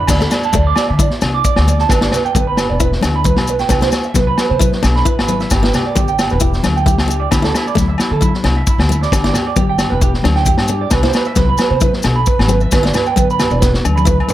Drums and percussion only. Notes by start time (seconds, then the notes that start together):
0.07 kick, snare, crash, muted conga, low agogo, maracas
0.21 snare, maracas
0.31 snare, muted conga, low agogo, maracas
0.43 maracas
0.53 kick, high conga, maracas
0.76 snare, low agogo, maracas
0.99 kick, muted conga, high conga, maracas
1.10 snare
1.21 snare, low agogo, maracas
1.44 kick, maracas
1.56 snare, low agogo
1.67 muted conga, high conga, maracas
1.79 snare, maracas
1.89 kick, snare, muted conga, low agogo, maracas
2.01 snare, maracas
2.11 snare, muted conga, low conga, low agogo, maracas
2.26 maracas
2.35 kick, high conga, maracas
2.57 snare, low agogo, maracas
2.80 kick, muted conga, maracas
2.92 snare
3.01 snare, high conga, low agogo, maracas
3.25 kick, high conga, maracas
3.36 snare, low agogo
3.47 muted conga, maracas
3.59 snare, maracas
3.69 kick, snare, muted conga, low agogo, maracas
3.81 snare, maracas
3.92 snare, muted conga, low agogo, maracas
4.04 maracas
4.14 kick, snare, high conga, maracas
4.38 snare, low agogo, maracas
4.60 kick, muted conga, high conga, maracas
4.72 snare
4.84 snare, low agogo, maracas
4.96 snare
5.06 kick, maracas
5.19 snare, low agogo
5.28 muted conga, high conga, maracas
5.40 snare, maracas
5.50 kick, snare, low agogo, maracas
5.64 snare
5.74 snare, muted conga, low conga, low agogo, maracas
5.96 kick, high conga, maracas
6.08 maracas
6.19 snare, low agogo, maracas
6.30 maracas
6.40 kick, muted conga, maracas
6.53 snare, maracas
6.63 snare, high conga, low agogo, maracas
6.77 maracas
6.86 kick, high conga, maracas
6.98 snare, low agogo, maracas
7.09 muted conga, maracas
7.31 kick, snare, muted conga, low agogo, maracas
7.44 snare, maracas
7.54 snare, muted conga, low agogo, maracas
7.68 maracas
7.77 kick, snare, high conga, maracas
7.98 snare, low agogo, maracas
8.22 kick, muted conga, high conga, maracas
8.34 snare
8.44 snare, low agogo
8.67 kick, maracas
8.79 snare, low agogo
8.90 muted conga, high conga, maracas
9.02 snare, maracas
9.12 kick, snare, muted conga, low agogo, maracas
9.24 snare, maracas
9.34 snare, muted conga, low conga, low agogo, maracas
9.56 kick, high conga, maracas
9.78 snare, low agogo, maracas
10.01 kick, muted conga, maracas
10.14 snare
10.23 snare, high conga, low agogo
10.36 snare
10.45 kick, high conga, maracas
10.58 snare, low agogo
10.68 muted conga, maracas
10.91 kick, snare, muted conga, low agogo, maracas
11.03 snare, maracas
11.13 snare, muted conga, low agogo, maracas
11.25 maracas
11.36 kick, snare, high conga, maracas
11.58 snare, low agogo, maracas
11.80 kick, muted conga, high conga, maracas
11.93 snare
12.03 snare, low agogo, maracas
12.26 kick, maracas
12.39 snare, low agogo
12.48 muted conga, high conga, maracas
12.61 maracas
12.71 kick, snare, muted conga, low agogo, maracas
12.84 snare, maracas
12.94 snare, muted conga, low conga, low agogo, maracas
13.06 maracas
13.16 kick, high conga, maracas
13.30 maracas
13.39 snare, low conga, low agogo, maracas
13.51 maracas
13.62 kick, snare, muted conga, maracas
13.74 snare, maracas
13.85 high conga, low agogo, maracas
13.97 high tom, maracas
14.06 kick, mid tom, high conga, maracas
14.20 low agogo
14.29 floor tom, muted conga, maracas